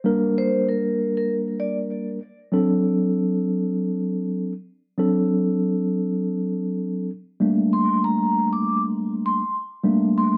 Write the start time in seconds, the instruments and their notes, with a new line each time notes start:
0.04 tine electric piano G3 A#3 D4 A#4
0.38 vibraphone C5
0.69 vibraphone A#4
1.17 vibraphone A#4
1.60 vibraphone D5
2.52 tine electric piano F#3 C4 D4 A4
4.98 tine electric piano F#3 C4 D4 A4
7.40 tine electric piano G3 A3 A#3 D4
7.73 vibraphone C6
8.04 vibraphone A#5
8.53 vibraphone D6
9.26 vibraphone C6
9.84 tine electric piano G3 A3 A#3 D4
10.18 vibraphone C6